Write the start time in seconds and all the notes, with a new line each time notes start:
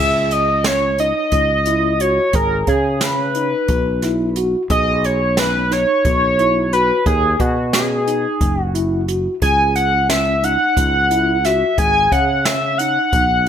Already playing: C#2 G#4 E5
0.31 D#5, closed hi-hat
0.64 C#4 C#5, snare, closed hi-hat
0.98 D#4 D#5, closed hi-hat
1.32 C#2, kick, closed hi-hat
1.65 E4, closed hi-hat
2.00 F#4 C#5, closed hi-hat
2.33 G#1 G#4 A#4, kick, closed hi-hat
2.67 C#3 G#4, kick, closed hi-hat
3.01 C#4 B4, snare, closed hi-hat
3.35 D#4, closed hi-hat
3.68 B1, kick, closed hi-hat
4.02 E4, snare, closed hi-hat
4.36 F#4, closed hi-hat
4.70 B1 G#4 D#5, kick, closed hi-hat
5.04 C#5, closed hi-hat
5.37 C#4 B4, snare, closed hi-hat
5.71 D#4 C#5, snare, closed hi-hat
6.05 B1, kick, closed hi-hat
6.39 E4, closed hi-hat
6.73 F#4 B4, closed hi-hat
7.06 D#2 G#4, kick, closed hi-hat
7.40 B2 F#4, kick, closed hi-hat
7.73 C#4 G#4, snare, closed hi-hat
8.07 D#4, closed hi-hat
8.41 F#1, kick, closed hi-hat
8.63 F#4
8.75 E4, closed hi-hat
9.08 F#4, closed hi-hat
9.42 C#2 G#4 G#5, kick, closed hi-hat
9.75 F#5, closed hi-hat
10.09 C#4 E5, snare, closed hi-hat
10.43 D#4 F#5, closed hi-hat
10.77 C#2, kick, closed hi-hat
11.11 E4, closed hi-hat
11.45 F#4 E5, snare, closed hi-hat
11.78 G#1 G#4 G#5, kick, closed hi-hat
12.12 C#3 F#5, kick, closed hi-hat
12.45 C#4 E5, snare, closed hi-hat
12.78 D#4 F#5, closed hi-hat
13.13 B1, kick, closed hi-hat